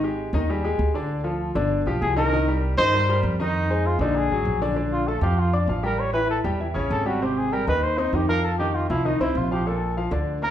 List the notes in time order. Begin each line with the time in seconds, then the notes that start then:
Already playing: G#1
0.03 G#3 G4 G#4
0.33 D#2 D#3 D#4 D#5
0.50 G3 G4 G#4
0.64 G#3 G4 G#4
0.79 D2
0.94 D3 D4 D5
1.24 F3 F4 A4
1.55 G1 D3 D4 D5
1.86 B1 F3 F4 G4
2.02 C2 G#4
2.16 D#3 D#4 A#4 D#5
2.33 D#3 D#4 D#5
2.48 G3 G4 A#4
2.77 G2 D#3 D#4 C5 D#5
2.93 G3 G4 A#4
3.09 G3 G4 A#4
3.23 F2
3.40 D#3 D#4 D#5
3.70 G#3 G#4 C5
3.86 F4
3.99 A#1 D3 D4 D#4 D5
4.16 G#4
4.30 G#1 F#3 F#4 G#4
4.45 A#1
4.61 D3 D4 D5
4.76 D3 D4 D5
4.93 F4
5.07 A3 A4 A5
5.21 F2 F3 F4 G4 F5
5.39 F4
5.53 D4 D5 D6
5.67 A1 F3 F4 F5
5.83 G3 G4 A#4 G5
6.00 C#5
6.13 E3 E4 B4 E5
6.30 A4
6.44 E2 G3 G4 G5
6.60 E3 E4 E5
6.74 A1 C#3 C#4 C#5
6.90 G#1 A4
7.05 G3 F#4 G4 G5
7.22 C3 C4 G4 C5
7.38 G#4
7.53 G3 G4 A#4 G5
7.67 D#2 D#3 D#4 B4 D#5
7.83 C5
7.98 C4 D#4 C5 C6
8.13 F2 D#3 D#4 G4 D#5
8.28 F3 F4 A#4 F5
8.44 A4
8.58 D#3 D#4 G4 D#5
8.75 F4
8.90 C2 F3 E4 F4 F5
9.05 D#3 D#4 D#5
9.20 C2 C3 C4 E4 C5
9.35 A#1 F4
9.51 F3 F4 G4 F5
9.67 A#2 A#3 A4
9.97 F3 F4 F5
10.11 D2 D3 D4 D5
10.43 A#3 A#4 A#5